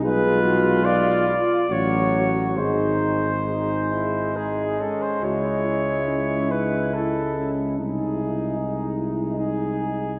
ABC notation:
X:1
M:3/4
L:1/16
Q:1/4=70
K:G#phr
V:1 name="Flugelhorn"
B4 =d4 c4 | ^B8 G2 A B | c6 B2 A3 z | G6 z2 G4 |]
V:2 name="French horn section"
G2 F2 =F2 F2 ^F2 F2 | G8- G2 z2 | F2 E2 C2 D2 E2 C2 | D2 E2 D2 E2 D4 |]
V:3 name="Trombone section"
=F8 ^F4 | D4 D2 E2 D2 C2 | E12 | D12 |]
V:4 name="Trombone" clef=bass
G,6 z2 F,4 | G,12- | G,12 | G,12 |]
V:5 name="Tuba" clef=bass
B,,,6 z2 A,,,4 | G,,,8- G,,,2 z2 | C,,12 | ^B,,,12 |]